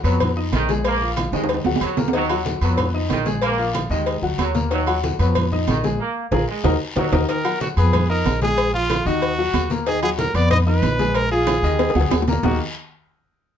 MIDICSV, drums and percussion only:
0, 0, Header, 1, 2, 480
1, 0, Start_track
1, 0, Key_signature, -6, "minor"
1, 0, Tempo, 321888
1, 1262, Time_signature, 4, 2, 24, 8
1, 20243, End_track
2, 0, Start_track
2, 0, Title_t, "Drums"
2, 64, Note_on_c, 9, 63, 37
2, 64, Note_on_c, 9, 73, 74
2, 66, Note_on_c, 9, 68, 85
2, 213, Note_off_c, 9, 73, 0
2, 214, Note_off_c, 9, 63, 0
2, 215, Note_off_c, 9, 68, 0
2, 304, Note_on_c, 9, 56, 107
2, 304, Note_on_c, 9, 74, 77
2, 305, Note_on_c, 9, 68, 107
2, 310, Note_on_c, 9, 63, 38
2, 310, Note_on_c, 9, 64, 88
2, 453, Note_off_c, 9, 56, 0
2, 453, Note_off_c, 9, 74, 0
2, 454, Note_off_c, 9, 68, 0
2, 459, Note_off_c, 9, 63, 0
2, 459, Note_off_c, 9, 64, 0
2, 552, Note_on_c, 9, 63, 36
2, 701, Note_off_c, 9, 63, 0
2, 783, Note_on_c, 9, 66, 85
2, 783, Note_on_c, 9, 68, 93
2, 783, Note_on_c, 9, 73, 77
2, 791, Note_on_c, 9, 56, 70
2, 791, Note_on_c, 9, 63, 78
2, 932, Note_off_c, 9, 66, 0
2, 932, Note_off_c, 9, 68, 0
2, 932, Note_off_c, 9, 73, 0
2, 940, Note_off_c, 9, 56, 0
2, 940, Note_off_c, 9, 63, 0
2, 1024, Note_on_c, 9, 73, 72
2, 1027, Note_on_c, 9, 56, 74
2, 1028, Note_on_c, 9, 63, 85
2, 1173, Note_off_c, 9, 73, 0
2, 1176, Note_off_c, 9, 56, 0
2, 1177, Note_off_c, 9, 63, 0
2, 1261, Note_on_c, 9, 56, 105
2, 1266, Note_on_c, 9, 68, 104
2, 1267, Note_on_c, 9, 74, 82
2, 1273, Note_on_c, 9, 63, 33
2, 1410, Note_off_c, 9, 56, 0
2, 1415, Note_off_c, 9, 68, 0
2, 1416, Note_off_c, 9, 74, 0
2, 1422, Note_off_c, 9, 63, 0
2, 1511, Note_on_c, 9, 63, 37
2, 1660, Note_off_c, 9, 63, 0
2, 1742, Note_on_c, 9, 73, 68
2, 1744, Note_on_c, 9, 66, 66
2, 1744, Note_on_c, 9, 68, 110
2, 1745, Note_on_c, 9, 63, 96
2, 1748, Note_on_c, 9, 56, 71
2, 1892, Note_off_c, 9, 73, 0
2, 1893, Note_off_c, 9, 66, 0
2, 1893, Note_off_c, 9, 68, 0
2, 1895, Note_off_c, 9, 63, 0
2, 1897, Note_off_c, 9, 56, 0
2, 1985, Note_on_c, 9, 65, 90
2, 1985, Note_on_c, 9, 73, 78
2, 2134, Note_off_c, 9, 73, 0
2, 2135, Note_off_c, 9, 65, 0
2, 2141, Note_on_c, 9, 65, 110
2, 2219, Note_on_c, 9, 68, 94
2, 2223, Note_on_c, 9, 63, 39
2, 2224, Note_on_c, 9, 56, 113
2, 2224, Note_on_c, 9, 74, 75
2, 2290, Note_off_c, 9, 65, 0
2, 2299, Note_on_c, 9, 65, 85
2, 2368, Note_off_c, 9, 68, 0
2, 2372, Note_off_c, 9, 63, 0
2, 2373, Note_off_c, 9, 56, 0
2, 2373, Note_off_c, 9, 74, 0
2, 2448, Note_off_c, 9, 65, 0
2, 2456, Note_on_c, 9, 66, 102
2, 2464, Note_on_c, 9, 63, 33
2, 2606, Note_off_c, 9, 66, 0
2, 2613, Note_off_c, 9, 63, 0
2, 2620, Note_on_c, 9, 66, 77
2, 2699, Note_on_c, 9, 73, 76
2, 2701, Note_on_c, 9, 68, 116
2, 2705, Note_on_c, 9, 56, 76
2, 2706, Note_on_c, 9, 63, 39
2, 2769, Note_off_c, 9, 66, 0
2, 2848, Note_off_c, 9, 73, 0
2, 2851, Note_off_c, 9, 68, 0
2, 2854, Note_off_c, 9, 56, 0
2, 2855, Note_off_c, 9, 63, 0
2, 2939, Note_on_c, 9, 66, 96
2, 2942, Note_on_c, 9, 56, 76
2, 2944, Note_on_c, 9, 63, 88
2, 2946, Note_on_c, 9, 73, 66
2, 3088, Note_off_c, 9, 66, 0
2, 3091, Note_off_c, 9, 56, 0
2, 3093, Note_off_c, 9, 63, 0
2, 3095, Note_off_c, 9, 73, 0
2, 3101, Note_on_c, 9, 66, 113
2, 3179, Note_on_c, 9, 56, 100
2, 3181, Note_on_c, 9, 68, 71
2, 3183, Note_on_c, 9, 63, 33
2, 3186, Note_on_c, 9, 74, 76
2, 3250, Note_off_c, 9, 66, 0
2, 3329, Note_off_c, 9, 56, 0
2, 3330, Note_off_c, 9, 68, 0
2, 3332, Note_off_c, 9, 63, 0
2, 3335, Note_off_c, 9, 74, 0
2, 3422, Note_on_c, 9, 68, 114
2, 3425, Note_on_c, 9, 63, 34
2, 3572, Note_off_c, 9, 68, 0
2, 3574, Note_off_c, 9, 63, 0
2, 3660, Note_on_c, 9, 56, 75
2, 3662, Note_on_c, 9, 66, 63
2, 3662, Note_on_c, 9, 73, 76
2, 3668, Note_on_c, 9, 63, 98
2, 3809, Note_off_c, 9, 56, 0
2, 3811, Note_off_c, 9, 66, 0
2, 3811, Note_off_c, 9, 73, 0
2, 3817, Note_off_c, 9, 63, 0
2, 3899, Note_on_c, 9, 73, 77
2, 3901, Note_on_c, 9, 68, 82
2, 3907, Note_on_c, 9, 63, 35
2, 4049, Note_off_c, 9, 73, 0
2, 4050, Note_off_c, 9, 68, 0
2, 4056, Note_off_c, 9, 63, 0
2, 4137, Note_on_c, 9, 56, 108
2, 4143, Note_on_c, 9, 68, 117
2, 4143, Note_on_c, 9, 74, 70
2, 4149, Note_on_c, 9, 63, 38
2, 4149, Note_on_c, 9, 64, 95
2, 4286, Note_off_c, 9, 56, 0
2, 4292, Note_off_c, 9, 68, 0
2, 4293, Note_off_c, 9, 74, 0
2, 4299, Note_off_c, 9, 63, 0
2, 4299, Note_off_c, 9, 64, 0
2, 4392, Note_on_c, 9, 63, 36
2, 4541, Note_off_c, 9, 63, 0
2, 4618, Note_on_c, 9, 56, 70
2, 4622, Note_on_c, 9, 66, 94
2, 4622, Note_on_c, 9, 68, 90
2, 4622, Note_on_c, 9, 73, 75
2, 4627, Note_on_c, 9, 63, 84
2, 4767, Note_off_c, 9, 56, 0
2, 4771, Note_off_c, 9, 66, 0
2, 4771, Note_off_c, 9, 68, 0
2, 4771, Note_off_c, 9, 73, 0
2, 4776, Note_off_c, 9, 63, 0
2, 4856, Note_on_c, 9, 56, 73
2, 4861, Note_on_c, 9, 73, 77
2, 4872, Note_on_c, 9, 63, 86
2, 5006, Note_off_c, 9, 56, 0
2, 5011, Note_off_c, 9, 73, 0
2, 5021, Note_off_c, 9, 63, 0
2, 5094, Note_on_c, 9, 56, 107
2, 5103, Note_on_c, 9, 74, 79
2, 5106, Note_on_c, 9, 68, 111
2, 5109, Note_on_c, 9, 63, 34
2, 5243, Note_off_c, 9, 56, 0
2, 5252, Note_off_c, 9, 74, 0
2, 5255, Note_off_c, 9, 68, 0
2, 5258, Note_off_c, 9, 63, 0
2, 5346, Note_on_c, 9, 63, 35
2, 5495, Note_off_c, 9, 63, 0
2, 5578, Note_on_c, 9, 56, 69
2, 5584, Note_on_c, 9, 73, 66
2, 5590, Note_on_c, 9, 63, 101
2, 5590, Note_on_c, 9, 66, 69
2, 5590, Note_on_c, 9, 68, 111
2, 5728, Note_off_c, 9, 56, 0
2, 5733, Note_off_c, 9, 73, 0
2, 5739, Note_off_c, 9, 63, 0
2, 5739, Note_off_c, 9, 66, 0
2, 5739, Note_off_c, 9, 68, 0
2, 5826, Note_on_c, 9, 73, 74
2, 5975, Note_off_c, 9, 73, 0
2, 6059, Note_on_c, 9, 56, 107
2, 6065, Note_on_c, 9, 74, 77
2, 6066, Note_on_c, 9, 68, 88
2, 6070, Note_on_c, 9, 63, 36
2, 6209, Note_off_c, 9, 56, 0
2, 6214, Note_off_c, 9, 74, 0
2, 6215, Note_off_c, 9, 68, 0
2, 6219, Note_off_c, 9, 63, 0
2, 6306, Note_on_c, 9, 63, 38
2, 6455, Note_off_c, 9, 63, 0
2, 6542, Note_on_c, 9, 56, 76
2, 6545, Note_on_c, 9, 66, 84
2, 6545, Note_on_c, 9, 68, 111
2, 6545, Note_on_c, 9, 73, 77
2, 6549, Note_on_c, 9, 63, 36
2, 6692, Note_off_c, 9, 56, 0
2, 6694, Note_off_c, 9, 66, 0
2, 6694, Note_off_c, 9, 68, 0
2, 6695, Note_off_c, 9, 73, 0
2, 6698, Note_off_c, 9, 63, 0
2, 6779, Note_on_c, 9, 56, 77
2, 6785, Note_on_c, 9, 73, 74
2, 6789, Note_on_c, 9, 63, 89
2, 6928, Note_off_c, 9, 56, 0
2, 6934, Note_off_c, 9, 73, 0
2, 6938, Note_off_c, 9, 63, 0
2, 7021, Note_on_c, 9, 56, 96
2, 7024, Note_on_c, 9, 74, 76
2, 7025, Note_on_c, 9, 68, 73
2, 7032, Note_on_c, 9, 63, 37
2, 7170, Note_off_c, 9, 56, 0
2, 7173, Note_off_c, 9, 74, 0
2, 7174, Note_off_c, 9, 68, 0
2, 7181, Note_off_c, 9, 63, 0
2, 7265, Note_on_c, 9, 68, 109
2, 7273, Note_on_c, 9, 63, 35
2, 7414, Note_off_c, 9, 68, 0
2, 7422, Note_off_c, 9, 63, 0
2, 7505, Note_on_c, 9, 56, 75
2, 7507, Note_on_c, 9, 73, 75
2, 7510, Note_on_c, 9, 66, 70
2, 7511, Note_on_c, 9, 63, 103
2, 7654, Note_off_c, 9, 56, 0
2, 7656, Note_off_c, 9, 73, 0
2, 7659, Note_off_c, 9, 66, 0
2, 7661, Note_off_c, 9, 63, 0
2, 7745, Note_on_c, 9, 68, 82
2, 7748, Note_on_c, 9, 73, 78
2, 7751, Note_on_c, 9, 63, 37
2, 7895, Note_off_c, 9, 68, 0
2, 7898, Note_off_c, 9, 73, 0
2, 7900, Note_off_c, 9, 63, 0
2, 7981, Note_on_c, 9, 56, 104
2, 7985, Note_on_c, 9, 68, 113
2, 7989, Note_on_c, 9, 74, 77
2, 7995, Note_on_c, 9, 63, 37
2, 7995, Note_on_c, 9, 64, 90
2, 8130, Note_off_c, 9, 56, 0
2, 8134, Note_off_c, 9, 68, 0
2, 8138, Note_off_c, 9, 74, 0
2, 8144, Note_off_c, 9, 63, 0
2, 8144, Note_off_c, 9, 64, 0
2, 8235, Note_on_c, 9, 63, 35
2, 8235, Note_on_c, 9, 64, 71
2, 8384, Note_off_c, 9, 63, 0
2, 8384, Note_off_c, 9, 64, 0
2, 8463, Note_on_c, 9, 56, 77
2, 8465, Note_on_c, 9, 66, 87
2, 8465, Note_on_c, 9, 68, 98
2, 8470, Note_on_c, 9, 73, 79
2, 8474, Note_on_c, 9, 63, 87
2, 8612, Note_off_c, 9, 56, 0
2, 8614, Note_off_c, 9, 66, 0
2, 8614, Note_off_c, 9, 68, 0
2, 8620, Note_off_c, 9, 73, 0
2, 8623, Note_off_c, 9, 63, 0
2, 8707, Note_on_c, 9, 56, 70
2, 8711, Note_on_c, 9, 73, 70
2, 8712, Note_on_c, 9, 63, 82
2, 8856, Note_off_c, 9, 56, 0
2, 8860, Note_off_c, 9, 73, 0
2, 8861, Note_off_c, 9, 63, 0
2, 9420, Note_on_c, 9, 56, 97
2, 9424, Note_on_c, 9, 65, 105
2, 9428, Note_on_c, 9, 74, 101
2, 9431, Note_on_c, 9, 63, 107
2, 9569, Note_off_c, 9, 56, 0
2, 9573, Note_off_c, 9, 65, 0
2, 9577, Note_off_c, 9, 74, 0
2, 9580, Note_off_c, 9, 63, 0
2, 9906, Note_on_c, 9, 56, 98
2, 9907, Note_on_c, 9, 74, 101
2, 9908, Note_on_c, 9, 65, 114
2, 9910, Note_on_c, 9, 63, 107
2, 10055, Note_off_c, 9, 56, 0
2, 10056, Note_off_c, 9, 74, 0
2, 10057, Note_off_c, 9, 65, 0
2, 10059, Note_off_c, 9, 63, 0
2, 10383, Note_on_c, 9, 56, 103
2, 10386, Note_on_c, 9, 65, 96
2, 10388, Note_on_c, 9, 63, 98
2, 10388, Note_on_c, 9, 74, 100
2, 10532, Note_off_c, 9, 56, 0
2, 10535, Note_off_c, 9, 65, 0
2, 10537, Note_off_c, 9, 63, 0
2, 10538, Note_off_c, 9, 74, 0
2, 10623, Note_on_c, 9, 56, 104
2, 10627, Note_on_c, 9, 65, 114
2, 10628, Note_on_c, 9, 74, 102
2, 10633, Note_on_c, 9, 63, 96
2, 10773, Note_off_c, 9, 56, 0
2, 10776, Note_off_c, 9, 65, 0
2, 10777, Note_off_c, 9, 74, 0
2, 10782, Note_off_c, 9, 63, 0
2, 10866, Note_on_c, 9, 56, 113
2, 10868, Note_on_c, 9, 63, 34
2, 10868, Note_on_c, 9, 74, 72
2, 10873, Note_on_c, 9, 68, 70
2, 11015, Note_off_c, 9, 56, 0
2, 11017, Note_off_c, 9, 63, 0
2, 11017, Note_off_c, 9, 74, 0
2, 11022, Note_off_c, 9, 68, 0
2, 11106, Note_on_c, 9, 68, 103
2, 11110, Note_on_c, 9, 63, 37
2, 11255, Note_off_c, 9, 68, 0
2, 11259, Note_off_c, 9, 63, 0
2, 11345, Note_on_c, 9, 56, 72
2, 11348, Note_on_c, 9, 66, 62
2, 11350, Note_on_c, 9, 63, 93
2, 11351, Note_on_c, 9, 73, 73
2, 11494, Note_off_c, 9, 56, 0
2, 11497, Note_off_c, 9, 66, 0
2, 11499, Note_off_c, 9, 63, 0
2, 11500, Note_off_c, 9, 73, 0
2, 11589, Note_on_c, 9, 68, 86
2, 11591, Note_on_c, 9, 73, 76
2, 11597, Note_on_c, 9, 63, 38
2, 11738, Note_off_c, 9, 68, 0
2, 11741, Note_off_c, 9, 73, 0
2, 11746, Note_off_c, 9, 63, 0
2, 11826, Note_on_c, 9, 56, 101
2, 11830, Note_on_c, 9, 74, 75
2, 11832, Note_on_c, 9, 68, 115
2, 11836, Note_on_c, 9, 63, 36
2, 11836, Note_on_c, 9, 64, 91
2, 11975, Note_off_c, 9, 56, 0
2, 11979, Note_off_c, 9, 74, 0
2, 11981, Note_off_c, 9, 68, 0
2, 11985, Note_off_c, 9, 63, 0
2, 11985, Note_off_c, 9, 64, 0
2, 12075, Note_on_c, 9, 63, 38
2, 12225, Note_off_c, 9, 63, 0
2, 12306, Note_on_c, 9, 56, 70
2, 12313, Note_on_c, 9, 66, 98
2, 12313, Note_on_c, 9, 68, 98
2, 12313, Note_on_c, 9, 73, 75
2, 12315, Note_on_c, 9, 63, 83
2, 12455, Note_off_c, 9, 56, 0
2, 12462, Note_off_c, 9, 73, 0
2, 12463, Note_off_c, 9, 66, 0
2, 12463, Note_off_c, 9, 68, 0
2, 12464, Note_off_c, 9, 63, 0
2, 12549, Note_on_c, 9, 56, 74
2, 12554, Note_on_c, 9, 63, 90
2, 12554, Note_on_c, 9, 73, 70
2, 12698, Note_off_c, 9, 56, 0
2, 12703, Note_off_c, 9, 63, 0
2, 12703, Note_off_c, 9, 73, 0
2, 12790, Note_on_c, 9, 68, 110
2, 12791, Note_on_c, 9, 56, 109
2, 12792, Note_on_c, 9, 63, 31
2, 12794, Note_on_c, 9, 74, 83
2, 12940, Note_off_c, 9, 68, 0
2, 12941, Note_off_c, 9, 56, 0
2, 12941, Note_off_c, 9, 63, 0
2, 12943, Note_off_c, 9, 74, 0
2, 13032, Note_on_c, 9, 63, 36
2, 13181, Note_off_c, 9, 63, 0
2, 13268, Note_on_c, 9, 63, 104
2, 13273, Note_on_c, 9, 73, 75
2, 13275, Note_on_c, 9, 56, 72
2, 13277, Note_on_c, 9, 66, 69
2, 13277, Note_on_c, 9, 68, 117
2, 13417, Note_off_c, 9, 63, 0
2, 13422, Note_off_c, 9, 73, 0
2, 13424, Note_off_c, 9, 56, 0
2, 13426, Note_off_c, 9, 66, 0
2, 13426, Note_off_c, 9, 68, 0
2, 13513, Note_on_c, 9, 73, 77
2, 13662, Note_off_c, 9, 73, 0
2, 13749, Note_on_c, 9, 68, 90
2, 13751, Note_on_c, 9, 63, 36
2, 13754, Note_on_c, 9, 56, 105
2, 13755, Note_on_c, 9, 74, 81
2, 13898, Note_off_c, 9, 68, 0
2, 13901, Note_off_c, 9, 63, 0
2, 13903, Note_off_c, 9, 56, 0
2, 13904, Note_off_c, 9, 74, 0
2, 13993, Note_on_c, 9, 63, 34
2, 14142, Note_off_c, 9, 63, 0
2, 14227, Note_on_c, 9, 66, 92
2, 14227, Note_on_c, 9, 68, 112
2, 14233, Note_on_c, 9, 73, 85
2, 14234, Note_on_c, 9, 63, 35
2, 14235, Note_on_c, 9, 56, 70
2, 14376, Note_off_c, 9, 66, 0
2, 14376, Note_off_c, 9, 68, 0
2, 14382, Note_off_c, 9, 73, 0
2, 14383, Note_off_c, 9, 63, 0
2, 14384, Note_off_c, 9, 56, 0
2, 14465, Note_on_c, 9, 63, 89
2, 14471, Note_on_c, 9, 73, 74
2, 14475, Note_on_c, 9, 56, 78
2, 14614, Note_off_c, 9, 63, 0
2, 14620, Note_off_c, 9, 73, 0
2, 14624, Note_off_c, 9, 56, 0
2, 14708, Note_on_c, 9, 68, 72
2, 14711, Note_on_c, 9, 74, 69
2, 14712, Note_on_c, 9, 63, 36
2, 14713, Note_on_c, 9, 56, 111
2, 14858, Note_off_c, 9, 68, 0
2, 14860, Note_off_c, 9, 74, 0
2, 14862, Note_off_c, 9, 63, 0
2, 14863, Note_off_c, 9, 56, 0
2, 14951, Note_on_c, 9, 63, 36
2, 14952, Note_on_c, 9, 68, 110
2, 15101, Note_off_c, 9, 63, 0
2, 15101, Note_off_c, 9, 68, 0
2, 15189, Note_on_c, 9, 63, 107
2, 15190, Note_on_c, 9, 73, 72
2, 15192, Note_on_c, 9, 56, 77
2, 15193, Note_on_c, 9, 66, 65
2, 15338, Note_off_c, 9, 63, 0
2, 15339, Note_off_c, 9, 73, 0
2, 15341, Note_off_c, 9, 56, 0
2, 15342, Note_off_c, 9, 66, 0
2, 15426, Note_on_c, 9, 73, 80
2, 15431, Note_on_c, 9, 63, 35
2, 15431, Note_on_c, 9, 68, 93
2, 15575, Note_off_c, 9, 73, 0
2, 15580, Note_off_c, 9, 63, 0
2, 15580, Note_off_c, 9, 68, 0
2, 15665, Note_on_c, 9, 56, 106
2, 15669, Note_on_c, 9, 74, 72
2, 15670, Note_on_c, 9, 68, 123
2, 15672, Note_on_c, 9, 63, 39
2, 15672, Note_on_c, 9, 64, 96
2, 15814, Note_off_c, 9, 56, 0
2, 15818, Note_off_c, 9, 74, 0
2, 15820, Note_off_c, 9, 68, 0
2, 15822, Note_off_c, 9, 63, 0
2, 15822, Note_off_c, 9, 64, 0
2, 15916, Note_on_c, 9, 63, 34
2, 16065, Note_off_c, 9, 63, 0
2, 16146, Note_on_c, 9, 66, 83
2, 16146, Note_on_c, 9, 68, 91
2, 16146, Note_on_c, 9, 73, 78
2, 16147, Note_on_c, 9, 56, 68
2, 16153, Note_on_c, 9, 63, 90
2, 16295, Note_off_c, 9, 66, 0
2, 16295, Note_off_c, 9, 68, 0
2, 16295, Note_off_c, 9, 73, 0
2, 16297, Note_off_c, 9, 56, 0
2, 16302, Note_off_c, 9, 63, 0
2, 16388, Note_on_c, 9, 73, 73
2, 16394, Note_on_c, 9, 56, 74
2, 16394, Note_on_c, 9, 63, 91
2, 16537, Note_off_c, 9, 73, 0
2, 16543, Note_off_c, 9, 56, 0
2, 16543, Note_off_c, 9, 63, 0
2, 16620, Note_on_c, 9, 68, 107
2, 16626, Note_on_c, 9, 74, 69
2, 16630, Note_on_c, 9, 56, 111
2, 16632, Note_on_c, 9, 63, 32
2, 16769, Note_off_c, 9, 68, 0
2, 16775, Note_off_c, 9, 74, 0
2, 16779, Note_off_c, 9, 56, 0
2, 16781, Note_off_c, 9, 63, 0
2, 16869, Note_on_c, 9, 63, 32
2, 17018, Note_off_c, 9, 63, 0
2, 17102, Note_on_c, 9, 63, 97
2, 17103, Note_on_c, 9, 56, 70
2, 17103, Note_on_c, 9, 65, 108
2, 17103, Note_on_c, 9, 68, 112
2, 17108, Note_on_c, 9, 73, 75
2, 17251, Note_off_c, 9, 63, 0
2, 17252, Note_off_c, 9, 65, 0
2, 17252, Note_off_c, 9, 68, 0
2, 17253, Note_off_c, 9, 56, 0
2, 17257, Note_off_c, 9, 73, 0
2, 17352, Note_on_c, 9, 73, 77
2, 17501, Note_off_c, 9, 73, 0
2, 17585, Note_on_c, 9, 56, 107
2, 17585, Note_on_c, 9, 60, 84
2, 17585, Note_on_c, 9, 63, 36
2, 17585, Note_on_c, 9, 74, 75
2, 17586, Note_on_c, 9, 66, 86
2, 17586, Note_on_c, 9, 68, 91
2, 17734, Note_off_c, 9, 56, 0
2, 17734, Note_off_c, 9, 60, 0
2, 17734, Note_off_c, 9, 63, 0
2, 17734, Note_off_c, 9, 74, 0
2, 17735, Note_off_c, 9, 66, 0
2, 17735, Note_off_c, 9, 68, 0
2, 17744, Note_on_c, 9, 60, 87
2, 17822, Note_on_c, 9, 66, 96
2, 17826, Note_on_c, 9, 63, 35
2, 17893, Note_off_c, 9, 60, 0
2, 17904, Note_on_c, 9, 60, 89
2, 17971, Note_off_c, 9, 66, 0
2, 17975, Note_off_c, 9, 63, 0
2, 18053, Note_off_c, 9, 60, 0
2, 18063, Note_on_c, 9, 56, 71
2, 18063, Note_on_c, 9, 61, 102
2, 18065, Note_on_c, 9, 66, 116
2, 18065, Note_on_c, 9, 68, 105
2, 18071, Note_on_c, 9, 63, 38
2, 18071, Note_on_c, 9, 73, 71
2, 18212, Note_off_c, 9, 56, 0
2, 18212, Note_off_c, 9, 61, 0
2, 18214, Note_off_c, 9, 66, 0
2, 18214, Note_off_c, 9, 68, 0
2, 18220, Note_off_c, 9, 63, 0
2, 18220, Note_off_c, 9, 73, 0
2, 18227, Note_on_c, 9, 61, 94
2, 18306, Note_on_c, 9, 56, 72
2, 18307, Note_on_c, 9, 63, 91
2, 18308, Note_on_c, 9, 73, 76
2, 18309, Note_on_c, 9, 66, 87
2, 18376, Note_off_c, 9, 61, 0
2, 18381, Note_on_c, 9, 61, 67
2, 18455, Note_off_c, 9, 56, 0
2, 18456, Note_off_c, 9, 63, 0
2, 18457, Note_off_c, 9, 73, 0
2, 18458, Note_off_c, 9, 66, 0
2, 18530, Note_off_c, 9, 61, 0
2, 18541, Note_on_c, 9, 61, 97
2, 18544, Note_on_c, 9, 64, 99
2, 18547, Note_on_c, 9, 74, 99
2, 18551, Note_on_c, 9, 66, 105
2, 18690, Note_off_c, 9, 61, 0
2, 18693, Note_off_c, 9, 64, 0
2, 18696, Note_off_c, 9, 74, 0
2, 18701, Note_off_c, 9, 66, 0
2, 20243, End_track
0, 0, End_of_file